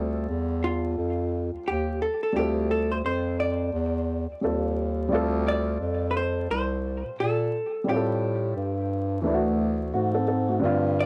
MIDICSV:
0, 0, Header, 1, 4, 480
1, 0, Start_track
1, 0, Key_signature, -1, "minor"
1, 0, Tempo, 689655
1, 1639, Time_signature, 4, 2, 24, 8
1, 7696, End_track
2, 0, Start_track
2, 0, Title_t, "Hollow-body jazz guitar"
2, 0, Program_c, 0, 26
2, 446, Note_on_c, 0, 65, 82
2, 1167, Note_on_c, 0, 67, 89
2, 1184, Note_off_c, 0, 65, 0
2, 1386, Note_off_c, 0, 67, 0
2, 1405, Note_on_c, 0, 69, 81
2, 1537, Note_off_c, 0, 69, 0
2, 1551, Note_on_c, 0, 69, 67
2, 1636, Note_off_c, 0, 69, 0
2, 1646, Note_on_c, 0, 67, 97
2, 1866, Note_off_c, 0, 67, 0
2, 1886, Note_on_c, 0, 69, 86
2, 2018, Note_off_c, 0, 69, 0
2, 2030, Note_on_c, 0, 72, 79
2, 2065, Note_off_c, 0, 72, 0
2, 2128, Note_on_c, 0, 72, 94
2, 2363, Note_off_c, 0, 72, 0
2, 2366, Note_on_c, 0, 74, 91
2, 3054, Note_off_c, 0, 74, 0
2, 3816, Note_on_c, 0, 74, 100
2, 4221, Note_off_c, 0, 74, 0
2, 4251, Note_on_c, 0, 71, 64
2, 4284, Note_off_c, 0, 71, 0
2, 4292, Note_on_c, 0, 72, 91
2, 4524, Note_off_c, 0, 72, 0
2, 4532, Note_on_c, 0, 72, 107
2, 4978, Note_off_c, 0, 72, 0
2, 5012, Note_on_c, 0, 69, 89
2, 5490, Note_off_c, 0, 69, 0
2, 5493, Note_on_c, 0, 67, 78
2, 6418, Note_off_c, 0, 67, 0
2, 7659, Note_on_c, 0, 74, 106
2, 7696, Note_off_c, 0, 74, 0
2, 7696, End_track
3, 0, Start_track
3, 0, Title_t, "Upright piano"
3, 0, Program_c, 1, 0
3, 0, Note_on_c, 1, 55, 76
3, 0, Note_on_c, 1, 60, 70
3, 0, Note_on_c, 1, 65, 70
3, 0, Note_on_c, 1, 69, 83
3, 1600, Note_off_c, 1, 55, 0
3, 1606, Note_off_c, 1, 60, 0
3, 1612, Note_off_c, 1, 65, 0
3, 1618, Note_off_c, 1, 69, 0
3, 1618, Note_on_c, 1, 55, 59
3, 1633, Note_on_c, 1, 60, 63
3, 1645, Note_on_c, 1, 65, 55
3, 1660, Note_on_c, 1, 69, 67
3, 3041, Note_off_c, 1, 55, 0
3, 3048, Note_off_c, 1, 60, 0
3, 3054, Note_off_c, 1, 65, 0
3, 3062, Note_off_c, 1, 69, 0
3, 3070, Note_on_c, 1, 55, 52
3, 3079, Note_on_c, 1, 60, 54
3, 3085, Note_on_c, 1, 65, 50
3, 3091, Note_on_c, 1, 69, 62
3, 3530, Note_off_c, 1, 55, 0
3, 3540, Note_on_c, 1, 55, 76
3, 3543, Note_off_c, 1, 60, 0
3, 3554, Note_on_c, 1, 60, 71
3, 3555, Note_off_c, 1, 65, 0
3, 3565, Note_off_c, 1, 69, 0
3, 3565, Note_on_c, 1, 65, 75
3, 3580, Note_on_c, 1, 69, 83
3, 5442, Note_off_c, 1, 55, 0
3, 5448, Note_off_c, 1, 60, 0
3, 5454, Note_off_c, 1, 65, 0
3, 5456, Note_on_c, 1, 55, 66
3, 5461, Note_off_c, 1, 69, 0
3, 5469, Note_on_c, 1, 60, 57
3, 5480, Note_on_c, 1, 65, 63
3, 5495, Note_on_c, 1, 68, 59
3, 5540, Note_on_c, 1, 69, 67
3, 5541, Note_off_c, 1, 68, 0
3, 6408, Note_off_c, 1, 55, 0
3, 6415, Note_off_c, 1, 60, 0
3, 6416, Note_on_c, 1, 52, 73
3, 6420, Note_off_c, 1, 65, 0
3, 6429, Note_on_c, 1, 57, 74
3, 6443, Note_on_c, 1, 62, 69
3, 6451, Note_off_c, 1, 69, 0
3, 6455, Note_on_c, 1, 64, 63
3, 6501, Note_on_c, 1, 66, 75
3, 6502, Note_off_c, 1, 64, 0
3, 6904, Note_off_c, 1, 57, 0
3, 6905, Note_off_c, 1, 66, 0
3, 6911, Note_off_c, 1, 62, 0
3, 6916, Note_on_c, 1, 66, 67
3, 6921, Note_on_c, 1, 57, 54
3, 7055, Note_off_c, 1, 66, 0
3, 7058, Note_off_c, 1, 57, 0
3, 7060, Note_on_c, 1, 69, 68
3, 7065, Note_on_c, 1, 60, 62
3, 7142, Note_off_c, 1, 69, 0
3, 7148, Note_off_c, 1, 60, 0
3, 7152, Note_on_c, 1, 69, 69
3, 7159, Note_on_c, 1, 60, 58
3, 7294, Note_off_c, 1, 69, 0
3, 7297, Note_off_c, 1, 60, 0
3, 7301, Note_on_c, 1, 66, 62
3, 7303, Note_on_c, 1, 57, 59
3, 7368, Note_off_c, 1, 52, 0
3, 7374, Note_on_c, 1, 50, 84
3, 7387, Note_on_c, 1, 55, 73
3, 7399, Note_on_c, 1, 60, 71
3, 7412, Note_on_c, 1, 65, 85
3, 7531, Note_off_c, 1, 57, 0
3, 7531, Note_off_c, 1, 66, 0
3, 7696, Note_off_c, 1, 50, 0
3, 7696, Note_off_c, 1, 55, 0
3, 7696, Note_off_c, 1, 60, 0
3, 7696, Note_off_c, 1, 65, 0
3, 7696, End_track
4, 0, Start_track
4, 0, Title_t, "Bass clarinet"
4, 0, Program_c, 2, 71
4, 0, Note_on_c, 2, 38, 89
4, 176, Note_off_c, 2, 38, 0
4, 198, Note_on_c, 2, 40, 90
4, 655, Note_off_c, 2, 40, 0
4, 678, Note_on_c, 2, 41, 78
4, 1045, Note_off_c, 2, 41, 0
4, 1066, Note_on_c, 2, 39, 44
4, 1103, Note_off_c, 2, 39, 0
4, 1157, Note_on_c, 2, 39, 83
4, 1446, Note_off_c, 2, 39, 0
4, 1638, Note_on_c, 2, 38, 99
4, 2095, Note_off_c, 2, 38, 0
4, 2119, Note_on_c, 2, 41, 87
4, 2575, Note_off_c, 2, 41, 0
4, 2597, Note_on_c, 2, 40, 93
4, 2964, Note_off_c, 2, 40, 0
4, 2985, Note_on_c, 2, 39, 44
4, 3023, Note_off_c, 2, 39, 0
4, 3081, Note_on_c, 2, 39, 90
4, 3536, Note_off_c, 2, 39, 0
4, 3561, Note_on_c, 2, 38, 105
4, 4016, Note_off_c, 2, 38, 0
4, 4039, Note_on_c, 2, 41, 91
4, 4495, Note_off_c, 2, 41, 0
4, 4519, Note_on_c, 2, 36, 83
4, 4885, Note_off_c, 2, 36, 0
4, 4907, Note_on_c, 2, 46, 48
4, 4944, Note_off_c, 2, 46, 0
4, 5001, Note_on_c, 2, 46, 91
4, 5288, Note_off_c, 2, 46, 0
4, 5480, Note_on_c, 2, 45, 91
4, 5935, Note_off_c, 2, 45, 0
4, 5960, Note_on_c, 2, 43, 90
4, 6440, Note_on_c, 2, 38, 105
4, 6451, Note_off_c, 2, 43, 0
4, 6896, Note_off_c, 2, 38, 0
4, 6919, Note_on_c, 2, 44, 95
4, 7375, Note_off_c, 2, 44, 0
4, 7397, Note_on_c, 2, 43, 104
4, 7696, Note_off_c, 2, 43, 0
4, 7696, End_track
0, 0, End_of_file